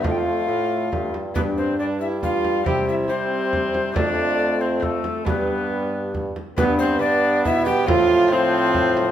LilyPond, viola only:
\new Staff \with { instrumentName = "Viola" } { \time 3/4 \key g \mixolydian \tempo 4 = 138 f'2~ f'8 r8 | b8 c'8 d'8 e'8 f'4 | g'8 e'8 c'2 | d'4. c'8 a4 |
b2 r4 | b8 c'8 d'4 e'8 g'8 | f'4 c'2 | }